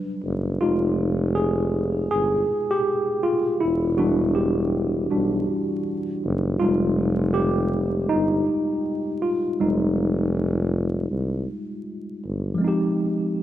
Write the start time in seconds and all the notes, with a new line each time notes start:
Already playing: F#3 G3 D4
0.24 F#1
0.61 F1 G#3 D#4 F4 G4
1.35 G#4
2.11 G1 G#4
2.71 G4
3.23 F4
3.60 E1 E4
3.98 E3 G3 D4 F#4
4.35 G4
5.11 B1 G3 D4 F#4
6.24 F#1
6.60 F1 G3 G#3 D#4 F4
7.34 G4
8.09 G1 D#4
9.22 F4
9.60 F1 G3 G#3 D#4
11.11 C2
12.24 G1
12.55 F3 G#3
12.61 C4 D#4
12.68 G4